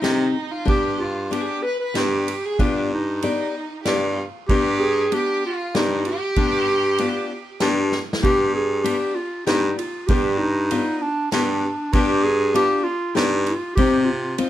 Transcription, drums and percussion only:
0, 0, Header, 1, 2, 480
1, 0, Start_track
1, 0, Tempo, 635593
1, 510, Time_signature, 3, 2, 24, 8
1, 2907, Tempo, 626959
1, 5787, Tempo, 614754
1, 11163, End_track
2, 0, Start_track
2, 0, Title_t, "Drums"
2, 28, Note_on_c, 9, 38, 63
2, 28, Note_on_c, 9, 51, 46
2, 104, Note_off_c, 9, 38, 0
2, 104, Note_off_c, 9, 51, 0
2, 511, Note_on_c, 9, 36, 95
2, 513, Note_on_c, 9, 51, 42
2, 587, Note_off_c, 9, 36, 0
2, 589, Note_off_c, 9, 51, 0
2, 1001, Note_on_c, 9, 51, 50
2, 1077, Note_off_c, 9, 51, 0
2, 1474, Note_on_c, 9, 38, 58
2, 1474, Note_on_c, 9, 51, 47
2, 1549, Note_off_c, 9, 38, 0
2, 1549, Note_off_c, 9, 51, 0
2, 1721, Note_on_c, 9, 51, 49
2, 1797, Note_off_c, 9, 51, 0
2, 1957, Note_on_c, 9, 36, 78
2, 1961, Note_on_c, 9, 51, 49
2, 2033, Note_off_c, 9, 36, 0
2, 2036, Note_off_c, 9, 51, 0
2, 2435, Note_on_c, 9, 51, 51
2, 2511, Note_off_c, 9, 51, 0
2, 2911, Note_on_c, 9, 38, 68
2, 2911, Note_on_c, 9, 51, 49
2, 2988, Note_off_c, 9, 38, 0
2, 2988, Note_off_c, 9, 51, 0
2, 3398, Note_on_c, 9, 36, 88
2, 3400, Note_on_c, 9, 51, 46
2, 3475, Note_off_c, 9, 36, 0
2, 3476, Note_off_c, 9, 51, 0
2, 3879, Note_on_c, 9, 51, 48
2, 3955, Note_off_c, 9, 51, 0
2, 4360, Note_on_c, 9, 38, 72
2, 4360, Note_on_c, 9, 51, 40
2, 4437, Note_off_c, 9, 38, 0
2, 4437, Note_off_c, 9, 51, 0
2, 4592, Note_on_c, 9, 51, 39
2, 4668, Note_off_c, 9, 51, 0
2, 4831, Note_on_c, 9, 51, 46
2, 4834, Note_on_c, 9, 36, 85
2, 4908, Note_off_c, 9, 51, 0
2, 4911, Note_off_c, 9, 36, 0
2, 5307, Note_on_c, 9, 51, 50
2, 5383, Note_off_c, 9, 51, 0
2, 5781, Note_on_c, 9, 38, 59
2, 5781, Note_on_c, 9, 51, 50
2, 5859, Note_off_c, 9, 38, 0
2, 5859, Note_off_c, 9, 51, 0
2, 6028, Note_on_c, 9, 38, 39
2, 6106, Note_off_c, 9, 38, 0
2, 6193, Note_on_c, 9, 38, 63
2, 6271, Note_off_c, 9, 38, 0
2, 6275, Note_on_c, 9, 36, 81
2, 6281, Note_on_c, 9, 51, 55
2, 6353, Note_off_c, 9, 36, 0
2, 6359, Note_off_c, 9, 51, 0
2, 6758, Note_on_c, 9, 51, 57
2, 6837, Note_off_c, 9, 51, 0
2, 7240, Note_on_c, 9, 38, 62
2, 7240, Note_on_c, 9, 51, 44
2, 7318, Note_off_c, 9, 38, 0
2, 7318, Note_off_c, 9, 51, 0
2, 7485, Note_on_c, 9, 51, 46
2, 7563, Note_off_c, 9, 51, 0
2, 7719, Note_on_c, 9, 51, 48
2, 7721, Note_on_c, 9, 36, 101
2, 7797, Note_off_c, 9, 51, 0
2, 7800, Note_off_c, 9, 36, 0
2, 8204, Note_on_c, 9, 51, 53
2, 8282, Note_off_c, 9, 51, 0
2, 8684, Note_on_c, 9, 38, 58
2, 8684, Note_on_c, 9, 51, 53
2, 8762, Note_off_c, 9, 38, 0
2, 8762, Note_off_c, 9, 51, 0
2, 9161, Note_on_c, 9, 51, 55
2, 9163, Note_on_c, 9, 36, 93
2, 9239, Note_off_c, 9, 51, 0
2, 9241, Note_off_c, 9, 36, 0
2, 9647, Note_on_c, 9, 51, 57
2, 9725, Note_off_c, 9, 51, 0
2, 10127, Note_on_c, 9, 38, 67
2, 10127, Note_on_c, 9, 51, 48
2, 10205, Note_off_c, 9, 38, 0
2, 10205, Note_off_c, 9, 51, 0
2, 10358, Note_on_c, 9, 51, 40
2, 10437, Note_off_c, 9, 51, 0
2, 10597, Note_on_c, 9, 36, 91
2, 10599, Note_on_c, 9, 51, 56
2, 10675, Note_off_c, 9, 36, 0
2, 10677, Note_off_c, 9, 51, 0
2, 11075, Note_on_c, 9, 51, 52
2, 11153, Note_off_c, 9, 51, 0
2, 11163, End_track
0, 0, End_of_file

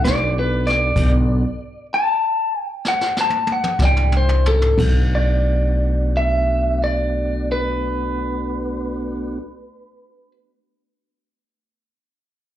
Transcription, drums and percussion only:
0, 0, Header, 1, 2, 480
1, 0, Start_track
1, 0, Key_signature, 2, "minor"
1, 0, Tempo, 614754
1, 753, Time_signature, 12, 3, 24, 8
1, 1719, Tempo, 642398
1, 3159, Tempo, 674157
1, 9166, End_track
2, 0, Start_track
2, 0, Title_t, "Drums"
2, 36, Note_on_c, 9, 42, 63
2, 53, Note_on_c, 9, 38, 92
2, 114, Note_off_c, 9, 42, 0
2, 131, Note_off_c, 9, 38, 0
2, 520, Note_on_c, 9, 42, 50
2, 537, Note_on_c, 9, 38, 28
2, 598, Note_off_c, 9, 42, 0
2, 615, Note_off_c, 9, 38, 0
2, 749, Note_on_c, 9, 36, 89
2, 752, Note_on_c, 9, 42, 57
2, 752, Note_on_c, 9, 49, 59
2, 827, Note_off_c, 9, 36, 0
2, 830, Note_off_c, 9, 42, 0
2, 830, Note_off_c, 9, 49, 0
2, 2202, Note_on_c, 9, 38, 48
2, 2277, Note_off_c, 9, 38, 0
2, 2324, Note_on_c, 9, 38, 48
2, 2399, Note_off_c, 9, 38, 0
2, 2441, Note_on_c, 9, 38, 57
2, 2515, Note_off_c, 9, 38, 0
2, 2540, Note_on_c, 9, 48, 49
2, 2615, Note_off_c, 9, 48, 0
2, 2667, Note_on_c, 9, 48, 61
2, 2741, Note_off_c, 9, 48, 0
2, 2792, Note_on_c, 9, 47, 55
2, 2867, Note_off_c, 9, 47, 0
2, 2907, Note_on_c, 9, 36, 74
2, 2908, Note_on_c, 9, 47, 66
2, 2925, Note_on_c, 9, 38, 71
2, 2982, Note_off_c, 9, 36, 0
2, 2983, Note_off_c, 9, 47, 0
2, 3000, Note_off_c, 9, 38, 0
2, 3037, Note_on_c, 9, 45, 64
2, 3111, Note_off_c, 9, 45, 0
2, 3153, Note_on_c, 9, 45, 68
2, 3224, Note_off_c, 9, 45, 0
2, 3272, Note_on_c, 9, 43, 61
2, 3343, Note_off_c, 9, 43, 0
2, 3394, Note_on_c, 9, 43, 80
2, 3465, Note_off_c, 9, 43, 0
2, 3507, Note_on_c, 9, 43, 67
2, 3578, Note_off_c, 9, 43, 0
2, 3627, Note_on_c, 9, 36, 84
2, 3631, Note_on_c, 9, 49, 63
2, 3699, Note_off_c, 9, 36, 0
2, 3702, Note_off_c, 9, 49, 0
2, 9166, End_track
0, 0, End_of_file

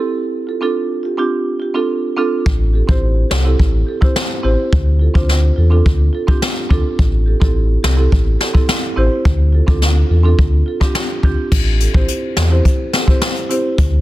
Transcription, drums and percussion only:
0, 0, Header, 1, 2, 480
1, 0, Start_track
1, 0, Key_signature, -1, "minor"
1, 0, Tempo, 566038
1, 166, Time_signature, 4, 2, 24, 8
1, 11881, End_track
2, 0, Start_track
2, 0, Title_t, "Drums"
2, 2086, Note_on_c, 9, 36, 117
2, 2171, Note_off_c, 9, 36, 0
2, 2448, Note_on_c, 9, 36, 98
2, 2533, Note_off_c, 9, 36, 0
2, 2806, Note_on_c, 9, 38, 106
2, 2890, Note_off_c, 9, 38, 0
2, 3048, Note_on_c, 9, 36, 90
2, 3133, Note_off_c, 9, 36, 0
2, 3408, Note_on_c, 9, 36, 84
2, 3493, Note_off_c, 9, 36, 0
2, 3527, Note_on_c, 9, 38, 115
2, 3612, Note_off_c, 9, 38, 0
2, 4008, Note_on_c, 9, 36, 116
2, 4092, Note_off_c, 9, 36, 0
2, 4369, Note_on_c, 9, 36, 100
2, 4453, Note_off_c, 9, 36, 0
2, 4487, Note_on_c, 9, 38, 64
2, 4572, Note_off_c, 9, 38, 0
2, 4968, Note_on_c, 9, 36, 93
2, 5053, Note_off_c, 9, 36, 0
2, 5327, Note_on_c, 9, 36, 89
2, 5412, Note_off_c, 9, 36, 0
2, 5446, Note_on_c, 9, 38, 111
2, 5531, Note_off_c, 9, 38, 0
2, 5686, Note_on_c, 9, 36, 91
2, 5771, Note_off_c, 9, 36, 0
2, 5927, Note_on_c, 9, 36, 114
2, 6012, Note_off_c, 9, 36, 0
2, 6288, Note_on_c, 9, 36, 98
2, 6373, Note_off_c, 9, 36, 0
2, 6648, Note_on_c, 9, 38, 107
2, 6732, Note_off_c, 9, 38, 0
2, 6888, Note_on_c, 9, 36, 94
2, 6973, Note_off_c, 9, 36, 0
2, 7128, Note_on_c, 9, 38, 74
2, 7212, Note_off_c, 9, 38, 0
2, 7247, Note_on_c, 9, 36, 93
2, 7332, Note_off_c, 9, 36, 0
2, 7367, Note_on_c, 9, 38, 108
2, 7452, Note_off_c, 9, 38, 0
2, 7846, Note_on_c, 9, 36, 113
2, 7931, Note_off_c, 9, 36, 0
2, 8208, Note_on_c, 9, 36, 99
2, 8292, Note_off_c, 9, 36, 0
2, 8325, Note_on_c, 9, 38, 62
2, 8410, Note_off_c, 9, 38, 0
2, 8808, Note_on_c, 9, 36, 97
2, 8893, Note_off_c, 9, 36, 0
2, 9167, Note_on_c, 9, 36, 91
2, 9167, Note_on_c, 9, 37, 94
2, 9252, Note_off_c, 9, 36, 0
2, 9252, Note_off_c, 9, 37, 0
2, 9285, Note_on_c, 9, 38, 112
2, 9370, Note_off_c, 9, 38, 0
2, 9526, Note_on_c, 9, 36, 90
2, 9611, Note_off_c, 9, 36, 0
2, 9766, Note_on_c, 9, 49, 95
2, 9767, Note_on_c, 9, 36, 119
2, 9850, Note_off_c, 9, 49, 0
2, 9852, Note_off_c, 9, 36, 0
2, 10008, Note_on_c, 9, 42, 75
2, 10093, Note_off_c, 9, 42, 0
2, 10129, Note_on_c, 9, 36, 101
2, 10213, Note_off_c, 9, 36, 0
2, 10245, Note_on_c, 9, 42, 83
2, 10330, Note_off_c, 9, 42, 0
2, 10485, Note_on_c, 9, 42, 86
2, 10486, Note_on_c, 9, 38, 109
2, 10570, Note_off_c, 9, 42, 0
2, 10571, Note_off_c, 9, 38, 0
2, 10729, Note_on_c, 9, 36, 94
2, 10729, Note_on_c, 9, 42, 76
2, 10814, Note_off_c, 9, 36, 0
2, 10814, Note_off_c, 9, 42, 0
2, 10967, Note_on_c, 9, 42, 82
2, 10968, Note_on_c, 9, 38, 75
2, 11052, Note_off_c, 9, 38, 0
2, 11052, Note_off_c, 9, 42, 0
2, 11089, Note_on_c, 9, 36, 85
2, 11174, Note_off_c, 9, 36, 0
2, 11205, Note_on_c, 9, 42, 75
2, 11207, Note_on_c, 9, 38, 117
2, 11290, Note_off_c, 9, 42, 0
2, 11292, Note_off_c, 9, 38, 0
2, 11327, Note_on_c, 9, 42, 44
2, 11412, Note_off_c, 9, 42, 0
2, 11450, Note_on_c, 9, 42, 79
2, 11534, Note_off_c, 9, 42, 0
2, 11688, Note_on_c, 9, 36, 122
2, 11688, Note_on_c, 9, 42, 72
2, 11773, Note_off_c, 9, 36, 0
2, 11773, Note_off_c, 9, 42, 0
2, 11881, End_track
0, 0, End_of_file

